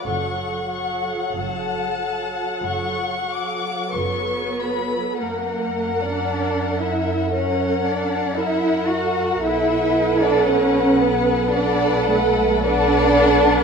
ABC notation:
X:1
M:4/4
L:1/16
Q:1/4=56
K:F#m
V:1 name="Violin section"
c'2 c'2 a4 c'2 d'2 c'2 b2 | f8 f4 f4 | f8 f4 f4 |]
V:2 name="Violin section"
f12 B4 | ^A3 d3 e2 c2 d2 e2 f2 | e3 d c2 B2 d2 A2 d4 |]
V:3 name="Viola section"
[F,A]2 [F,A]4 [F,A]4 [F,A]4 [F,A]2 | ^A8 A4 A4 | [AB]8 [AB]4 [AB]4 |]
V:4 name="Cello section"
F,,4 F,,4 F,,4 [F,,B,]4 | ^A,3 D3 E2 C2 D2 E2 F2 | E3 D C2 B,2 D2 A,2 D4 |]
V:5 name="Double bass section" clef=bass
F,,,4 F,,,4 F,,,4 F,,,4 | F,,16 | B,,,16 |]